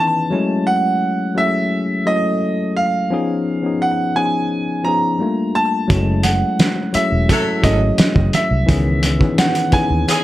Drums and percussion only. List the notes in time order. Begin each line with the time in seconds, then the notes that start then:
5.90 kick, closed hi-hat, muted conga
6.23 closed hi-hat, muted conga
6.59 snare, closed hi-hat, high conga
6.94 closed hi-hat
7.29 kick, closed hi-hat, muted conga, low conga
7.64 kick, closed hi-hat, muted conga
7.98 snare, closed hi-hat, high conga
8.16 kick, high conga
8.33 closed hi-hat, high conga
8.69 kick, closed hi-hat, muted conga
9.03 closed hi-hat, muted conga
9.21 kick
9.38 snare, closed hi-hat, high conga
9.55 closed hi-hat
9.72 kick, closed hi-hat
10.08 closed hi-hat, muted conga